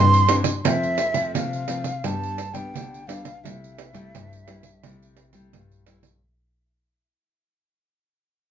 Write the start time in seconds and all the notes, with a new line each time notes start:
Already playing: G2 E3 C4 D4 C6
0.14 pandeiro
0.28 E3 C4 D4, pandeiro
0.44 pandeiro
0.64 F2 F3 A3 C4 E5, pandeiro
0.83 pandeiro
0.98 pandeiro
1.14 F3 A3 C4, pandeiro
1.34 C3 F5, pandeiro
1.53 pandeiro
1.68 F3 A3 C4, pandeiro
1.84 pandeiro
2.04 G2 G3 B3 D4 A5, pandeiro
2.23 pandeiro
2.38 pandeiro
2.53 G3 B3 D4 G5, pandeiro
2.74 D3, pandeiro
2.94 pandeiro
3.07 G3 B3 D4 F5, pandeiro
3.25 pandeiro
3.43 C3 G3 A3 E4 E5, pandeiro
3.64 pandeiro
3.78 pandeiro
3.93 G3 A3 E4, pandeiro
4.14 G2, pandeiro
4.33 pandeiro
4.48 G3 A3 E4, pandeiro
4.63 pandeiro
4.83 C3 G3 A3 E4, pandeiro
5.03 pandeiro
5.17 pandeiro
5.33 G3 A3 E4, pandeiro
5.53 G2, pandeiro
5.72 pandeiro
5.86 G3 A3 E4, pandeiro
6.03 pandeiro